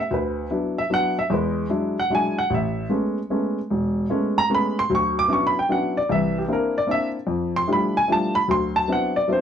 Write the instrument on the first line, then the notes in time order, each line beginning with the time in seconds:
grand piano
0.00 E5
0.11 D2 B4
0.50 F#3 B3 D4 E4
0.78 E5
0.90 F#3 B3 D4 E4 F#5
1.19 E5
1.30 E2 G#3 B4
1.69 F#3 G#3 D4 E4
2.00 F#5
2.10 F#3 G#3 D4 E4
2.15 G#5
2.38 F#5
2.50 A1
2.54 E5
2.89 G#3 A3 B3 C#4
3.30 G#3 A3 B3 C#4
3.70 E1
4.10 G#3 A3 B3 C#4
4.38 A#5
4.50 G#3 A3 B3 C#4
4.55 B5
4.79 C6
4.90 D2 F#3
4.95 C#6
5.19 D6
5.28 F#3 B3 C#4 D4 E4
5.33 C#6
5.47 B5
5.59 G5
5.69 F#3 B3 C#4 D4 E4 F#5
5.97 D5
6.09 C2 E3 E5
6.38 G4
6.48 A#3 C4 D4 E4
6.53 A#4
6.78 D5
6.87 A#3 C4 D4 E4
6.91 E5
7.27 F2
7.56 C6
7.67 F3 G3 A3 D4 E4
7.73 B5
7.97 G#5
8.08 F3 G3 A3 D4 E4
8.12 A5
8.35 B5
8.48 D2 F#3 C6
8.76 A5
8.88 F#3 B3 C4 D4 E4
8.93 F#5
9.16 D5
9.28 F#3 B3 C4 D4 E4
9.33 C5